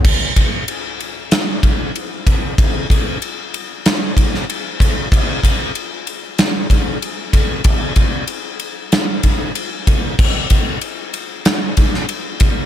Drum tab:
CC |x---------------|----------------|----------------|----------------|
RD |--x-x-x-x-x-x-x-|x-x-x-x-x-x-x-x-|x-x-x-x-x-x-x-x-|x-x-x-x-x-x-x-x-|
SD |--------o-------|--------o--o----|--------o-------|--------o-------|
BD |o-o-------o---o-|o-o-------o---o-|o-o-------o---o-|o-o-------o---o-|

CC |x---------------|
RD |--x-x-x-x-x-x-x-|
SD |--------o--o----|
BD |o-o-------o---o-|